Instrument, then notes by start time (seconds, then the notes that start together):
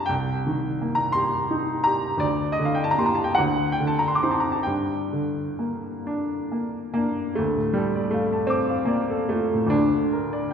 grand piano
Already playing: D3 A#3 D4 G4 A5 A#5 C6
0.06 C2 G5
0.47 D#3
0.82 A#3
0.95 A#5
1.12 G4 C6
1.51 D#4
1.84 G4 A#5
2.17 D2 D5
2.52 D#5
2.59 D3
2.65 F5
2.75 G5
2.84 A5
2.91 A#5
2.98 A#3 G4 C6
3.06 A#5
3.15 A5
3.24 G5
3.35 D2 F#5
3.72 G5
3.80 D3
3.87 A5
3.99 A#5
4.08 C6
4.15 D6
4.23 C4 D#4 C6
4.31 A5
4.40 A#5
4.52 A5
4.63 G2 G5
5.13 D3
5.59 A#3
6.07 D4
6.52 A#3
6.94 A#3 D4
7.35 D2 A3
7.56 A2
7.73 G3 A4
7.95 D5
8.11 A3 F5
8.33 A5
8.47 C4 D6
8.69 F5
8.85 A#3 D5
9.10 A4
9.29 A3 F4
9.54 A2
9.67 D2 D4
9.94 D3
10.13 A#4
10.33 D5